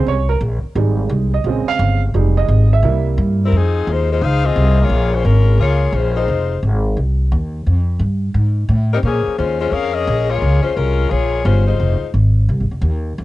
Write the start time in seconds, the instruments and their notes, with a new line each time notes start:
Already playing: upright piano C#3 G#3 C4
0.06 upright bass C2, upright piano C#5
0.29 upright piano A#4
0.41 upright bass A#1
0.63 muted upright bass stroke
0.75 upright bass G#1, upright piano G3 G#3 D#4
1.09 upright bass C2
1.34 upright piano D#5
1.44 upright bass A#1, upright piano C#3 G#3 C4
1.66 upright piano F5, muted upright bass stroke
1.79 upright bass G1
2.14 upright bass F1, upright piano G3 G#3 D#4
2.37 upright piano D#5
2.48 upright bass G#1
2.73 upright piano E5
2.83 upright bass C2, upright piano G3 A#3 E4
3.18 upright bass G2
3.44 saxophone section G3 C4 E4 A#4
3.52 upright bass F2, saxophone section F3 C4 D#4 G#4
3.87 upright bass D#2, saxophone section G#3 D#4 F4 C5
4.12 saxophone section G#3 D#4 F4 C5
4.22 upright bass C#2, saxophone section D#4 G#4 C5 F5
4.45 saxophone section C4 F4 G#4 D#5
4.56 upright bass C2
4.80 saxophone section A#3 F4 G#4 C#5
4.89 upright bass A#1
5.14 saxophone section G#3 C#4 F4 C5
5.25 upright bass G#1, saxophone section G#3 C#4 F4 A#4
5.58 upright bass C#2, saxophone section A#3 F4 G#4 C#5
5.92 upright bass A#1, saxophone section G#3 C#4 F4 C5
6.16 saxophone section G#3 D#4 F4 C5
6.28 upright bass F1
6.63 upright bass G#1
6.97 upright bass C2
7.32 upright bass D#2
7.67 upright bass F2
7.99 upright bass G2
8.34 upright bass G#2
8.69 upright bass A2
8.93 saxophone section G3 C4 D#4 A#4
9.03 upright bass A#2, saxophone section F3 A#3 C#4 G#4
9.27 muted upright bass stroke
9.38 upright bass D#2, saxophone section G#3 C#4 F4 C5
9.60 saxophone section G#3 C#4 F4 C5
9.72 upright bass F2, saxophone section C#4 G#4 A#4 F5
9.94 saxophone section C#4 G#4 A#4 D#5
10.07 upright bass A#1
10.28 saxophone section A#3 F4 G#4 C#5
10.42 upright bass C#2
10.62 saxophone section G#3 C#4 F4 C5, muted upright bass stroke
10.74 upright bass C2, saxophone section G#3 C#4 F4 A#4
11.09 upright bass A#1, saxophone section A#3 F4 G#4 C#5
11.44 upright bass G1, saxophone section G#3 C#4 F4 C5
11.67 saxophone section G#3 D#4 F4 C5
11.80 upright bass F1
12.01 muted upright bass stroke
12.14 upright bass G#1
12.49 upright bass C2
12.60 upright bass G#1
12.71 upright bass F1
12.81 upright bass D#2
13.18 upright bass F2